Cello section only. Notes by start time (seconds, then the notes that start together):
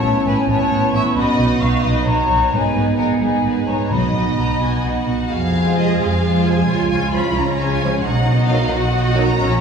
0.03 A2
0.25 A2
0.48 A2
0.70 A2
0.93 A2
1.16 B2
1.37 B2
1.61 B2
1.83 B2
2.06 B2
2.28 B2
2.52 G#2
2.74 G#2
2.97 G#2
3.20 G#2
3.43 G#2
3.67 G#2
3.90 B2
4.13 B2
4.36 B2
4.60 B2
4.83 B2
5.07 B2
5.30 G#4
6.67 F4
7.35 C#4
8.02 D#4
8.70 F#4
9.38 C#4